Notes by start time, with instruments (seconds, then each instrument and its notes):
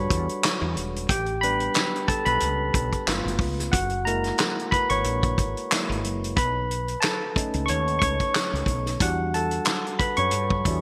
Already playing: tine electric piano G3 D4 F#4 A4 B4 C#5 F#5 A5 B5 C#6
0.10 fretless electric bass E2, kick, closed hi-hat
0.29 closed hi-hat
0.44 snare, clap, closed hi-hat
0.62 fretless electric bass E2
0.77 fretless electric bass E1, closed hi-hat
0.96 closed hi-hat
1.09 fretless electric bass A1, tine electric piano G4 G5, kick, closed hi-hat
1.26 closed hi-hat
1.41 tine electric piano G3 B3 D4 B4 B5, closed hi-hat
1.60 closed hi-hat
1.74 snare, clap, closed hi-hat
1.96 closed hi-hat
2.08 tine electric piano A4 A5, muted fretless electric bass stroke, kick, closed hi-hat
2.25 fretless electric bass B1, tine electric piano B4 B5, closed hi-hat
2.40 fretless electric bass C#2, closed hi-hat
2.74 fretless electric bass B1, kick, closed hi-hat
2.93 kick, closed hi-hat
3.06 fretless electric bass G1, tine electric piano A3 B3 F4, snare, clap, closed hi-hat
3.25 fretless electric bass G1, closed hi-hat
3.39 fretless electric bass C#2, kick, open hi-hat
3.59 snare, closed hi-hat
3.72 fretless electric bass F#1, tine electric piano F#4 F#5, kick, closed hi-hat
3.90 closed hi-hat
4.05 tine electric piano G#3 A#3 E4 A#4 A#5, closed hi-hat
4.24 snare, closed hi-hat
4.38 snare, clap, closed hi-hat
4.59 closed hi-hat
4.71 tine electric piano B4 B5, muted fretless electric bass stroke, kick, closed hi-hat
4.90 fretless electric bass G#1, tine electric piano C#5 C#6, closed hi-hat
5.04 fretless electric bass A#1, closed hi-hat
5.23 kick, closed hi-hat
5.38 fretless electric bass G#1, kick, closed hi-hat
5.57 closed hi-hat
5.72 tine electric piano G#3 A#3 E4, snare, clap, closed hi-hat
5.89 fretless electric bass G#1, closed hi-hat
6.04 fretless electric bass F#1, closed hi-hat
6.24 closed hi-hat
6.36 fretless electric bass B1, tine electric piano B4 B5, kick, closed hi-hat
6.71 closed hi-hat
6.88 closed hi-hat
7.00 tine electric piano A4 A5, snare, clap, closed hi-hat
7.36 tine electric piano A3 C#4 D#4, muted fretless electric bass stroke, kick, closed hi-hat
7.54 fretless electric bass C#2, closed hi-hat
7.66 fretless electric bass D#2, tine electric piano C#5 C#6, closed hi-hat
7.88 closed hi-hat
7.99 fretless electric bass C#2, tine electric piano C#5 C#6, kick, closed hi-hat
8.20 kick, closed hi-hat
8.35 snare, clap, closed hi-hat
8.53 fretless electric bass C#2, closed hi-hat
8.66 fretless electric bass B1, kick, closed hi-hat
8.86 snare, closed hi-hat
9.00 fretless electric bass E2, tine electric piano G3 D4 F#4 F#5, kick, closed hi-hat
9.34 tine electric piano A4 A5, closed hi-hat
9.51 closed hi-hat
9.65 snare, clap, closed hi-hat
9.87 closed hi-hat
9.99 tine electric piano B4 B5, muted fretless electric bass stroke, kick, closed hi-hat
10.17 fretless electric bass F#2, tine electric piano C#5 C#6, closed hi-hat
10.31 fretless electric bass G2, closed hi-hat
10.50 kick
10.65 fretless electric bass E2, tine electric piano G3 D4 F#4, kick, closed hi-hat